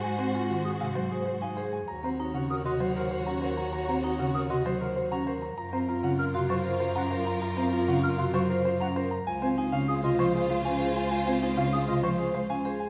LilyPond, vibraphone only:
\new Staff \with { instrumentName = "Vibraphone" } { \time 6/4 \key ees \dorian \tempo 4 = 195 r4 f'8 r4 ges'8 r8 c''8 r8 ees'8 aes'8 r8 | r4 ees'8 des'8 r8 ges'8 r8 c''8 r8 des'8 bes'8 r8 | r4 ees'8 des'8 r8 ges'8 r8 c''8 r8 des'8 bes'8 r8 | r4 f'8 des'8 r8 ges'8 r8 c''8 r8 des'8 bes'8 r8 |
r4 f'8 des'8 r8 ges'8 r8 c''8 r8 des'8 bes'8 r8 | r4 ees'8 des'8 r8 f'8 r8 c''8 r8 des'8 aes'8 r8 | r4 ees'8 des'8 r8 f'8 r8 c''8 r8 des'8 aes'8 r8 | }